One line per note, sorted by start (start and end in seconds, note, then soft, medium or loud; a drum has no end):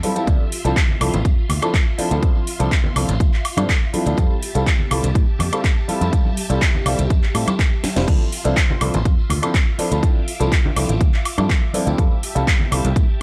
0.00 0.14 G3 medium
0.00 0.14 C4 medium
0.00 0.14 E4 medium
0.00 0.14 F4 medium
0.00 0.24 G4 medium
0.00 0.14 A4 medium
0.00 4.14 E5 medium
0.00 0.24 A5 medium
0.00 open hi-hat loud
0.00 high conga medium
0.16 0.26 G3 medium
0.16 0.26 C4 medium
0.16 0.26 E4 medium
0.16 0.26 F4 medium
0.16 0.26 A4 medium
0.16 closed hi-hat medium
0.16 tambourine medium
0.27 0.36 D2 medium
0.27 0.42 D4 medium
0.27 0.42 E4 medium
0.27 4.14 F4 medium
0.27 0.42 A4 medium
0.27 4.14 C6 medium
0.27 kick loud
0.27 closed hi-hat soft
0.27 tambourine medium
0.40 tambourine soft
0.52 open hi-hat loud
0.65 0.73 C2 medium
0.65 0.78 F3 medium
0.65 0.78 C4 medium
0.65 0.78 D4 medium
0.65 0.78 E4 medium
0.65 0.79 A4 loud
0.65 closed hi-hat medium
0.65 tambourine medium
0.76 kick loud
0.76 clap loud
0.76 closed hi-hat medium
0.76 tambourine medium
0.89 tambourine soft
0.89 low conga medium
1.01 1.09 C2 medium
1.01 1.15 F3 medium
1.01 1.15 C4 medium
1.01 1.15 D4 medium
1.01 1.15 E4 medium
1.01 1.16 A4 medium
1.01 open hi-hat loud
1.01 high woodblock medium
1.14 1.21 A1 loud
1.14 closed hi-hat medium
1.14 tambourine medium
1.14 low conga medium
1.25 1.34 F2 medium
1.25 kick loud
1.25 closed hi-hat medium
1.25 tambourine medium
1.38 tambourine soft
1.49 1.58 D2 medium
1.49 open hi-hat loud
1.49 low conga medium
1.49 high woodblock medium
1.62 1.76 F3 medium
1.62 1.76 C4 medium
1.62 1.76 D4 medium
1.62 1.76 E4 medium
1.62 1.76 A4 medium
1.62 closed hi-hat medium
1.62 tambourine medium
1.62 high woodblock medium
1.74 kick loud
1.74 clap loud
1.74 closed hi-hat soft
1.86 tambourine soft
1.98 2.09 F3 medium
1.98 2.09 C4 medium
1.98 2.09 D4 medium
1.98 2.09 E4 medium
1.98 2.09 A4 medium
1.98 muted fingered electric bass stroke soft
1.98 open hi-hat loud
2.11 2.19 D2 medium
2.11 2.21 F3 medium
2.11 2.21 C4 medium
2.11 2.21 D4 medium
2.11 2.21 E4 medium
2.11 2.21 A4 medium
2.11 closed hi-hat medium
2.11 tambourine medium
2.22 2.37 F3 medium
2.22 2.37 C4 medium
2.22 2.37 E4 medium
2.22 kick loud
2.22 closed hi-hat soft
2.22 tambourine medium
2.35 tambourine soft
2.47 open hi-hat loud
2.59 2.68 C2 medium
2.59 2.73 F3 medium
2.59 2.73 C4 medium
2.59 2.73 D4 medium
2.59 2.73 E4 medium
2.59 2.74 A4 loud
2.59 closed hi-hat medium
2.59 tambourine medium
2.71 kick loud
2.71 clap loud
2.71 closed hi-hat medium
2.71 tambourine medium
2.84 tambourine soft
2.84 low conga medium
2.96 3.04 C2 medium
2.96 3.10 F3 medium
2.96 3.10 C4 medium
2.96 3.10 D4 medium
2.96 3.11 E4 medium
2.96 3.11 A4 medium
2.96 open hi-hat loud
2.96 high woodblock medium
3.08 3.17 A1 loud
3.08 closed hi-hat medium
3.08 tambourine medium
3.08 low conga medium
3.20 kick loud
3.20 closed hi-hat medium
3.20 tambourine medium
3.33 clap soft
3.33 tambourine soft
3.45 open hi-hat loud
3.45 high woodblock medium
3.57 3.65 G2 medium
3.57 3.71 F3 medium
3.57 3.71 C4 medium
3.57 3.71 D4 medium
3.57 3.71 E4 medium
3.57 3.71 A4 medium
3.57 closed hi-hat medium
3.57 tambourine medium
3.57 high conga medium
3.57 high woodblock medium
3.69 kick loud
3.69 clap loud
3.69 closed hi-hat soft
3.69 tambourine medium
3.82 tambourine soft
3.93 4.04 F3 medium
3.93 4.04 C4 medium
3.93 4.04 D4 medium
3.93 4.04 E4 medium
3.93 4.05 A4 medium
3.93 muted fingered electric bass stroke soft
3.93 open hi-hat loud
3.93 high conga medium
4.06 4.14 D2 medium
4.06 4.16 F3 medium
4.06 4.16 C4 medium
4.06 4.16 D4 medium
4.06 4.16 E4 medium
4.06 4.16 A4 medium
4.06 closed hi-hat medium
4.06 tambourine medium
4.17 4.26 F2 medium
4.17 4.32 G3 medium
4.17 4.32 E4 medium
4.17 4.33 F4 medium
4.17 8.04 G4 medium
4.17 4.33 A4 loud
4.17 8.04 E5 medium
4.17 8.04 A5 medium
4.17 kick loud
4.17 closed hi-hat medium
4.17 tambourine medium
4.30 tambourine soft
4.43 open hi-hat loud
4.55 4.63 C2 medium
4.55 4.68 G3 medium
4.55 4.69 C4 medium
4.55 4.69 E4 medium
4.55 4.69 F4 medium
4.55 4.69 A4 loud
4.55 closed hi-hat medium
4.55 tambourine medium
4.66 kick loud
4.66 clap loud
4.66 closed hi-hat medium
4.66 tambourine medium
4.79 tambourine soft
4.79 low conga medium
4.91 5.00 C2 medium
4.91 5.05 G3 medium
4.91 5.05 C4 medium
4.91 5.05 E4 medium
4.91 5.06 F4 medium
4.91 5.06 A4 medium
4.91 open hi-hat loud
4.91 high woodblock medium
5.03 5.12 C2 medium
5.03 closed hi-hat medium
5.03 tambourine medium
5.03 low conga medium
5.15 5.24 A2 medium
5.15 kick loud
5.15 closed hi-hat medium
5.15 tambourine medium
5.27 tambourine soft
5.39 5.48 F2 loud
5.39 open hi-hat loud
5.39 low conga medium
5.39 high woodblock medium
5.52 5.66 G3 medium
5.52 5.66 C4 medium
5.52 5.66 E4 medium
5.52 5.66 F4 medium
5.52 5.66 A4 medium
5.52 closed hi-hat medium
5.52 tambourine medium
5.52 high woodblock medium
5.64 kick loud
5.64 clap loud
5.64 closed hi-hat medium
5.64 tambourine medium
5.77 tambourine soft
5.88 5.99 G3 medium
5.88 5.99 C4 medium
5.88 5.99 E4 medium
5.88 5.99 F4 medium
5.88 6.00 A4 medium
5.88 muted fingered electric bass stroke soft
5.88 open hi-hat medium
6.01 6.09 F2 medium
6.01 6.10 G3 medium
6.01 6.11 C4 medium
6.01 6.11 E4 medium
6.01 6.11 F4 medium
6.01 6.11 A4 medium
6.01 closed hi-hat medium
6.01 tambourine medium
6.12 6.27 G3 medium
6.12 6.27 C4 medium
6.12 6.27 E4 medium
6.12 6.27 F4 medium
6.12 6.27 A4 medium
6.12 kick loud
6.12 closed hi-hat medium
6.12 tambourine medium
6.26 tambourine soft
6.26 high conga medium
6.37 open hi-hat loud
6.50 6.58 C2 medium
6.50 6.63 G3 medium
6.50 6.63 C4 medium
6.50 6.64 E4 medium
6.50 6.64 F4 medium
6.50 6.64 A4 loud
6.50 closed hi-hat medium
6.50 tambourine medium
6.62 kick loud
6.62 clap loud
6.62 closed hi-hat medium
6.62 tambourine medium
6.75 tambourine soft
6.75 low conga medium
6.86 6.94 C2 medium
6.86 7.00 G3 medium
6.86 7.00 C4 medium
6.86 7.01 E4 medium
6.86 7.01 F4 medium
6.86 7.01 A4 medium
6.86 open hi-hat loud
6.86 high woodblock medium
6.99 7.07 C2 loud
6.99 closed hi-hat medium
6.99 tambourine medium
6.99 low conga medium
7.10 7.19 F2 medium
7.10 kick loud
7.10 closed hi-hat medium
7.10 tambourine medium
7.23 muted fingered electric bass stroke soft
7.23 clap soft
7.23 tambourine soft
7.34 7.43 A2 loud
7.34 7.49 G3 medium
7.34 7.49 C4 medium
7.34 7.49 E4 medium
7.34 7.49 F4 medium
7.34 7.49 A4 medium
7.34 open hi-hat loud
7.34 high woodblock medium
7.47 closed hi-hat medium
7.47 tambourine medium
7.47 high conga medium
7.47 high woodblock medium
7.59 kick loud
7.59 clap loud
7.59 closed hi-hat medium
7.73 tambourine soft
7.84 muted fingered electric bass stroke soft
7.84 snare medium
7.84 open hi-hat loud
7.84 high conga medium
7.96 8.04 F1 medium
7.96 8.06 G3 medium
7.96 8.06 C4 medium
7.96 8.06 E4 medium
7.96 8.06 F4 medium
7.96 8.07 C5 medium
7.96 snare medium
7.96 closed hi-hat medium
7.96 tambourine medium
8.07 8.16 D2 medium
8.07 8.22 F3 medium
8.07 8.22 C4 medium
8.07 8.22 D4 medium
8.07 8.23 E4 medium
8.07 11.95 F4 medium
8.07 8.23 A4 loud
8.07 13.22 E5 medium
8.07 10.01 C6 medium
8.07 kick loud
8.07 closed hi-hat medium
8.07 crash medium
8.21 tambourine soft
8.32 open hi-hat loud
8.44 8.53 C2 medium
8.44 8.58 F3 medium
8.44 8.59 C4 medium
8.44 8.59 D4 medium
8.44 8.59 E4 medium
8.44 8.59 A4 loud
8.44 closed hi-hat medium
8.44 tambourine medium
8.57 kick loud
8.57 clap loud
8.57 closed hi-hat medium
8.69 tambourine soft
8.69 low conga loud
8.81 8.90 C2 loud
8.81 8.95 F3 medium
8.81 8.96 C4 medium
8.81 8.96 D4 medium
8.81 8.96 E4 medium
8.81 8.96 A4 medium
8.81 open hi-hat loud
8.81 high woodblock medium
8.94 9.02 A1 loud
8.94 closed hi-hat medium
8.94 tambourine medium
8.94 low conga medium
9.05 9.14 F2 medium
9.05 kick loud
9.05 closed hi-hat medium
9.05 tambourine medium
9.18 tambourine soft
9.30 9.38 D2 medium
9.30 open hi-hat loud
9.30 low conga medium
9.30 high woodblock medium
9.42 9.56 F3 medium
9.42 9.56 C4 medium
9.42 9.56 D4 medium
9.42 9.56 E4 medium
9.42 9.57 A4 medium
9.42 closed hi-hat medium
9.42 tambourine medium
9.42 high woodblock medium
9.54 kick loud
9.54 clap loud
9.54 closed hi-hat medium
9.54 tambourine medium
9.68 tambourine soft
9.78 9.89 F3 medium
9.78 9.90 C4 medium
9.78 9.90 D4 medium
9.78 9.90 E4 medium
9.78 9.90 A4 medium
9.78 muted fingered electric bass stroke soft
9.78 open hi-hat loud
9.91 9.99 D2 medium
9.91 10.01 F3 medium
9.91 10.01 C4 medium
9.91 10.01 D4 medium
9.91 10.02 E4 medium
9.91 10.02 A4 medium
9.91 closed hi-hat medium
9.91 tambourine medium
10.03 10.18 F3 medium
10.03 10.18 C4 medium
10.03 10.18 D4 medium
10.03 10.18 E4 medium
10.03 10.18 A4 medium
10.03 11.96 D6 medium
10.03 kick loud
10.03 closed hi-hat medium
10.03 tambourine medium
10.15 tambourine soft
10.28 open hi-hat loud
10.40 10.48 C2 medium
10.40 10.54 F3 medium
10.40 10.54 C4 medium
10.40 10.54 D4 medium
10.40 10.54 E4 medium
10.40 10.54 A4 loud
10.40 closed hi-hat medium
10.40 tambourine medium
10.52 kick loud
10.52 clap loud
10.52 closed hi-hat medium
10.52 tambourine medium
10.64 tambourine soft
10.64 low conga loud
10.76 10.85 C2 loud
10.76 10.91 F3 medium
10.76 10.91 C4 medium
10.76 10.91 D4 medium
10.76 10.91 E4 medium
10.76 10.91 A4 medium
10.76 open hi-hat loud
10.76 high woodblock medium
10.89 10.97 A1 loud
10.89 closed hi-hat medium
10.89 tambourine medium
10.89 low conga medium
11.01 11.09 D2 medium
11.01 kick loud
11.01 closed hi-hat medium
11.13 clap soft
11.13 tambourine soft
11.25 open hi-hat loud
11.25 high woodblock medium
11.38 11.46 G2 medium
11.38 11.51 F3 medium
11.38 11.51 C4 medium
11.38 11.52 D4 medium
11.38 11.52 E4 medium
11.38 11.52 A4 medium
11.38 tambourine medium
11.38 high conga loud
11.38 high woodblock medium
11.49 kick loud
11.49 clap loud
11.49 closed hi-hat medium
11.49 tambourine medium
11.62 tambourine soft
11.73 11.85 F3 medium
11.73 11.85 C4 medium
11.73 11.85 D4 medium
11.73 11.85 E4 medium
11.73 11.85 A4 medium
11.73 muted fingered electric bass stroke soft
11.73 open hi-hat loud
11.73 high conga medium
11.86 11.95 D2 medium
11.86 11.96 F3 medium
11.86 11.96 C4 medium
11.86 11.97 D4 medium
11.86 11.97 E4 medium
11.86 11.97 A4 medium
11.86 closed hi-hat medium
11.86 tambourine medium
11.98 12.07 F2 medium
11.98 12.13 G3 medium
11.98 12.13 C4 medium
11.98 12.13 E4 medium
11.98 12.13 F4 medium
11.98 13.22 G4 medium
11.98 12.13 A4 loud
11.98 13.22 A5 medium
11.98 kick loud
11.98 closed hi-hat soft
11.98 tambourine medium
12.11 tambourine soft
12.23 open hi-hat loud
12.35 12.43 C2 medium
12.35 12.49 G3 medium
12.35 12.49 C4 medium
12.35 12.49 E4 medium
12.35 12.49 F4 medium
12.35 12.49 A4 loud
12.35 closed hi-hat medium
12.35 tambourine medium
12.47 kick loud
12.47 clap loud
12.47 closed hi-hat medium
12.60 tambourine soft
12.60 low conga medium
12.71 12.80 C2 loud
12.71 12.86 G3 medium
12.71 12.86 C4 medium
12.71 12.86 E4 medium
12.71 12.86 F4 medium
12.71 12.86 A4 medium
12.71 open hi-hat loud
12.71 high woodblock medium
12.85 12.92 C2 loud
12.85 closed hi-hat medium
12.85 tambourine medium
12.85 low conga medium
12.96 13.05 A2 medium
12.96 kick loud
12.96 closed hi-hat medium
12.96 tambourine medium
13.09 tambourine soft